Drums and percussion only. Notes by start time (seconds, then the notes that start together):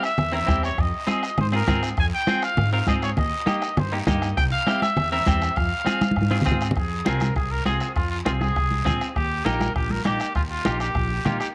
0.03 bombo rim, short guiro
0.18 bombo rim, low conga, long guiro
0.48 bombo low, bombo rim, high conga, short guiro
0.63 bombo rim, short guiro
0.78 bombo low, bombo rim, long guiro
1.07 bombo rim, high conga, short guiro
1.23 bombo rim, short guiro
1.38 bombo rim, low conga, long guiro
1.68 bombo low, bombo rim, high conga, low conga, short guiro
1.83 bombo rim, short guiro
1.97 bombo low, bombo rim, long guiro
2.27 bombo rim, high conga, short guiro
2.42 bombo rim, short guiro
2.57 bombo rim, low conga, long guiro
2.87 bombo low, bombo rim, high conga, short guiro
3.02 bombo rim, short guiro
3.17 bombo low, bombo rim, low conga, long guiro
3.47 bombo rim, high conga, short guiro
3.62 bombo rim, short guiro
3.77 bombo rim, low conga, long guiro
4.07 bombo low, bombo rim, high conga, low conga, short guiro
4.22 bombo rim, short guiro
4.37 bombo low, bombo rim, long guiro
4.67 bombo rim, high conga, short guiro
4.82 bombo rim, high conga, short guiro
4.97 bombo rim, low conga, long guiro
5.27 bombo low, bombo rim, high conga, short guiro
5.42 bombo rim, short guiro
5.56 bombo low, bombo rim, long guiro
5.86 bombo rim, high conga, short guiro
6.01 bombo rim, high conga, short guiro
6.11 high conga
6.16 bombo rim, long guiro
6.22 high conga
6.31 high conga
6.41 low conga
6.46 bombo low, bombo rim, short guiro
6.51 low conga
6.61 bombo rim, short guiro
6.71 low conga
6.75 bombo low, bombo rim, high conga, long guiro
7.05 bombo rim, high conga, short guiro
7.20 bombo rim, high conga, short guiro
7.36 bombo low, bombo rim, high conga, long guiro
7.66 bombo rim, high conga, short guiro
7.80 bombo rim, short guiro
7.96 bombo low, bombo rim, high conga, long guiro
8.26 bombo rim, high conga, short guiro
8.41 bombo rim, high conga, short guiro
8.56 bombo low, bombo rim, high conga, long guiro
8.71 high conga
8.86 bombo low, bombo rim, high conga, low conga, short guiro
9.01 bombo rim, short guiro
9.16 bombo low, bombo rim, high conga, long guiro
9.46 bombo rim, high conga, short guiro
9.60 bombo rim, high conga, short guiro
9.76 bombo low, bombo rim, high conga, long guiro
9.90 high conga
10.05 bombo rim, high conga, short guiro
10.20 bombo rim, short guiro
10.35 bombo low, bombo rim, high conga, long guiro
10.65 bombo rim, high conga, short guiro
10.80 bombo rim, short guiro
10.95 bombo low, bombo rim, high conga, long guiro
11.25 bombo rim, high conga, low conga, short guiro
11.40 bombo rim, short guiro